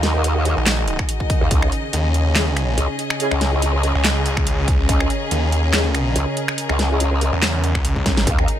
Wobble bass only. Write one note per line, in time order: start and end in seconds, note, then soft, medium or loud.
0.00 0.55 D#2 loud
1.41 1.49 D#2 loud
1.51 1.71 C#2 medium
2.78 2.87 C#2 loud
3.31 3.93 C#2 loud
4.89 5.09 C#2 loud
6.16 6.25 C#2 loud
6.69 7.31 C#2 loud
8.27 8.47 D#2 loud